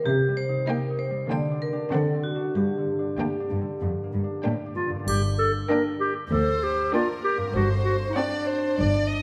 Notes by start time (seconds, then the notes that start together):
Already playing: A#3 G4 A#4
0.06 C3 G4
0.28 G3
0.37 C5
0.49 D#4
0.67 A#3 D#4 G4 A#4 G5
0.90 D#4
0.99 C5
1.11 G3
1.30 D3 A#3 D4 D5 G5
1.51 D4
1.62 A#4
1.73 D4 G4
1.92 D3 C4 D4 A4 F#5
2.14 C4
2.24 F#4
2.35 D4 F#4
2.55 G2 G4
2.78 D3
2.99 D4
3.18 D2 A#3 D4 G4 G5
3.40 D4
3.51 G2
3.61 D3
3.82 F2 G2
4.04 A#3
4.13 G2
4.24 D4
4.45 A2 A#3 D4 G4 G5
4.66 D4
4.76 G2 F4
4.87 G2 D3
4.95 A#3
4.99 D4
5.04 G2 G4, triangle
5.08 G1
5.39 A4
5.68 A#3 D4 A#4 G5
6.00 G4
6.31 D2 A4 C5
6.63 G4
6.93 A#3 D4 F4 A#4 G5
7.24 G4
7.38 G2
7.42 C4
7.47 F#4
7.51 G1 A4 C5
7.55 G2 F#4
7.85 F#4
8.10 D#4
8.16 C4 D4 D5 F#5
8.48 C5
8.78 G1 G2 D5
9.09 D#5